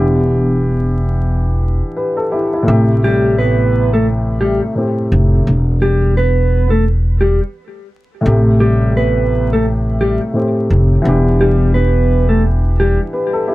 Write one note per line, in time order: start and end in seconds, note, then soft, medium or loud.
0.00 1.80 E1 loud
0.00 2.62 E3 medium
0.00 2.63 B3 medium
0.00 2.64 D4 medium
0.00 1.96 G4 medium
1.97 2.17 G4 medium
1.97 2.17 B4 medium
2.17 2.31 A4 medium
2.31 2.52 E4 medium
2.31 2.52 G4 medium
2.53 2.87 E4 medium
2.63 4.71 A2 medium
2.63 4.72 A3 medium
2.67 4.59 A1 loud
2.67 4.73 C3 medium
2.67 4.74 G4 medium
3.04 3.36 G3 medium
3.04 3.35 G4 medium
3.38 3.91 B3 medium
3.38 3.90 B4 medium
3.93 4.07 A3 medium
3.93 4.06 A4 medium
4.41 4.61 G3 medium
4.41 4.60 G4 medium
4.75 5.46 A2 medium
4.75 5.46 A3 medium
4.75 5.47 C4 medium
4.75 5.48 G4 medium
5.12 5.41 F1 loud
5.47 7.38 E1 loud
5.82 6.14 G3 medium
5.82 6.13 G4 medium
6.17 6.70 B3 medium
6.17 6.69 B4 medium
6.70 6.85 A3 medium
6.70 6.84 A4 medium
7.21 7.40 G3 medium
7.21 7.40 G4 medium
8.21 10.29 A2 medium
8.21 10.30 A3 medium
8.25 10.17 A1 loud
8.25 10.31 C3 medium
8.25 10.32 G4 medium
8.60 8.93 G3 medium
8.60 8.92 G4 medium
8.97 9.49 B3 medium
8.97 9.49 B4 medium
9.53 9.66 A3 medium
9.53 9.65 A4 medium
10.01 10.20 G3 medium
10.01 10.19 G4 medium
10.33 11.04 A2 medium
10.33 11.05 A3 medium
10.33 11.05 C4 medium
10.33 11.06 G4 medium
10.70 11.00 F1 loud
11.02 12.96 E1 loud
11.02 13.55 E3 medium
11.02 13.55 B3 medium
11.06 13.55 D4 medium
11.06 13.12 G4 medium
11.41 11.72 G3 medium
11.41 11.72 G4 medium
11.74 12.27 B3 medium
11.74 12.27 B4 medium
12.29 12.43 A3 medium
12.29 12.42 A4 medium
12.80 12.99 G3 medium
12.80 12.98 G4 medium
13.13 13.34 G4 medium
13.13 13.33 B4 medium
13.33 13.48 A4 medium
13.48 13.55 E4 medium
13.48 13.55 G4 medium